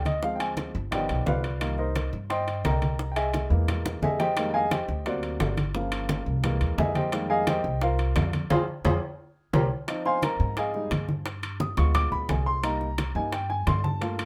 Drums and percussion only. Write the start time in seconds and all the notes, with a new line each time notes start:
0.05 high bongo, high conga, high timbale
0.23 high bongo
0.40 high bongo, high conga, high timbale
0.57 high bongo, high conga, high timbale, low timbale
0.75 high conga
0.92 high bongo, high conga, low conga, high timbale
1.09 high bongo, high conga, low conga, high timbale
1.26 high bongo, low bongo, high conga, low timbale
1.44 high bongo, high timbale
1.61 high bongo, high conga, high timbale
1.78 high conga
1.95 high bongo, high conga, high timbale, low timbale
2.13 high bongo, high conga
2.30 high bongo, high conga, high timbale
2.47 high bongo, high conga, high timbale
2.65 high bongo, low bongo, high conga, high timbale, low timbale
2.82 high bongo, high conga, high timbale
2.99 high bongo, high conga
3.16 high bongo, high conga, high timbale
3.34 high bongo, high conga, high timbale, low timbale
3.51 high conga
3.68 high bongo, high conga, low conga, high timbale
3.85 high bongo, high conga, low conga, high timbale
4.02 low bongo, high conga, low timbale
4.20 low bongo, high timbale
4.37 high bongo, high conga, high timbale
4.54 high conga
4.71 high bongo, high conga, high timbale, low timbale
4.89 high bongo, high conga
5.06 high bongo, high conga, high timbale
5.23 high bongo, high conga, high timbale
5.40 high bongo, low bongo, high conga, high timbale, low timbale
5.57 high bongo, high conga, high timbale
5.75 high bongo
5.92 high bongo, high conga, high timbale
6.09 high bongo, high conga, high timbale, low timbale
6.27 high conga
6.44 high bongo, high conga, low conga, high timbale
6.61 high bongo, high conga, high timbale
6.78 high bongo, low bongo, high conga, low timbale
6.95 high bongo, high conga, high timbale
7.12 high bongo, high conga, high timbale
7.30 high conga
7.47 high bongo, high conga, high timbale, low timbale
7.64 high bongo, high conga
7.82 high bongo, high conga, high timbale
7.99 high bongo, high conga, high timbale
8.16 high bongo, low bongo, high conga, high timbale, low timbale
8.33 high bongo, high conga, high timbale
8.50 low bongo, high conga, high timbale
8.85 low bongo, high conga, high timbale
9.53 low bongo, high conga, high timbale
9.88 high bongo, high conga, high timbale
10.05 high bongo, high conga
10.22 high bongo, high conga, high timbale
10.40 high conga
10.57 high bongo, high conga, high timbale
10.74 high bongo, high conga
10.91 high bongo, low bongo, high conga, high timbale
11.08 high bongo, high conga
11.26 high bongo, high conga, high timbale
11.43 high bongo, high conga, high timbale
11.60 high bongo, high conga
11.77 high bongo, high conga, high timbale
11.95 high bongo, high conga, low conga, high timbale
12.12 high bongo, high conga, low conga
12.29 high bongo, low bongo, high conga, high timbale, low timbale
12.46 high conga
12.63 high bongo, high conga, high timbale
12.81 high bongo, high conga
12.98 high bongo, high conga, high timbale
13.16 high conga
13.32 high bongo, high conga, high timbale
13.50 high bongo, high conga
13.67 high bongo, low bongo, high conga, high timbale, low timbale
13.84 high bongo, high conga
14.01 high bongo, high conga, high timbale
14.19 high bongo, high conga, high timbale